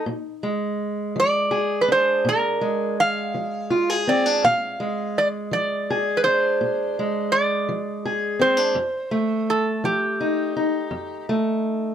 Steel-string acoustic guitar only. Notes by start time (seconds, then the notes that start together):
0.06 A#2
0.43 G#3
1.16 F3
1.51 G#4
1.88 D4
2.25 A#2
2.61 G#3
3.34 F3
3.70 F4
3.90 G#4
4.07 C4
4.26 D4
4.44 A#2
4.80 G#3
5.51 F3
5.90 G#4
6.27 D4
6.61 A#2
6.99 G#3
7.69 F3
8.05 G#4
8.39 C4
8.57 D4
8.75 F2
9.11 A3
9.84 F3
10.21 D#4
10.56 D#4
10.91 F2
11.29 A3